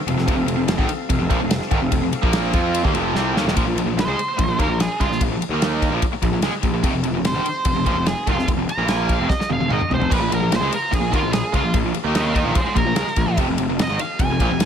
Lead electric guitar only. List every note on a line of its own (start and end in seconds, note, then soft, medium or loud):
4.00 4.58 C5 loud
4.62 4.80 A#4 medium
4.81 5.00 G#4 medium
5.01 5.20 F4 loud
7.26 7.85 C5 loud
7.86 8.06 C5 medium
8.07 8.27 G#4 medium
8.29 8.48 F4 loud
8.69 8.89 A#5 loud
8.89 9.09 G#5 medium
9.12 9.29 F5 medium
9.29 9.49 D#5 loud
9.52 9.71 F5 medium
9.73 9.91 D#5 medium
9.94 10.12 C5 medium
10.13 10.32 B4 medium
10.34 10.53 A#4 medium
10.56 10.74 C5 medium
10.74 10.93 A#4 medium
10.94 11.13 G#4 medium
11.14 11.33 F4 loud
11.33 11.53 G#4 loud
11.55 11.75 F4 loud
12.16 12.36 G#4 medium
12.16 12.35 F5 medium
12.34 12.54 A#4 medium
12.34 12.55 D#5 medium
12.56 12.75 D#4 medium
12.56 12.76 C5 medium
12.78 13.37 A#4 loud
13.82 14.00 D#5 medium
14.01 14.20 F5 loud
14.20 14.65 G#5 loud